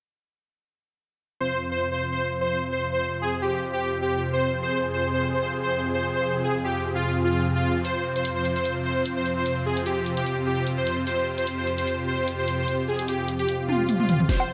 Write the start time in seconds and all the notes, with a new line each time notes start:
1.40 F2 C3 C4 F4 C5
1.72 C5
1.92 C5
2.12 C5
2.41 C5
2.72 C5
2.92 C5
3.22 G#4
3.42 G4
3.73 G4
4.02 G4
4.33 C5
4.63 G#4 C5
4.94 C5
5.14 C5
5.34 C5
5.63 C5
5.94 C5
6.14 C5
6.44 G#4
6.64 G4
6.95 F4
7.24 F4
7.55 F4
7.85 C5, closed hi-hat
8.16 C5, closed hi-hat
8.25 closed hi-hat
8.36 C5
8.45 closed hi-hat
8.56 C5, closed hi-hat
8.65 closed hi-hat
8.85 C5
9.06 closed hi-hat
9.16 C5
9.26 closed hi-hat
9.37 C5
9.46 closed hi-hat
9.66 G#4
9.77 closed hi-hat
9.86 G4, closed hi-hat
10.06 closed hi-hat
10.17 G4, closed hi-hat
10.26 closed hi-hat
10.46 G4
10.67 closed hi-hat
10.78 C5
10.87 closed hi-hat
11.07 G4 C5, closed hi-hat
11.38 C5, closed hi-hat
11.47 closed hi-hat
11.58 C5
11.67 closed hi-hat
11.78 C5, closed hi-hat
11.87 closed hi-hat
12.08 C5
12.28 closed hi-hat
12.39 C5
12.48 closed hi-hat
12.59 C5
12.68 closed hi-hat
12.88 G#4
12.99 closed hi-hat
13.08 G4, closed hi-hat
13.28 closed hi-hat
13.39 G4, closed hi-hat
13.49 closed hi-hat, swell
13.69 F4, high tom
13.89 closed hi-hat, mid tom
14.00 F4, mid tom
14.09 closed hi-hat, mid tom
14.20 mid tom
14.29 C3 C4 F4 C5, kick, snare, closed hi-hat, riser
14.40 low woodblock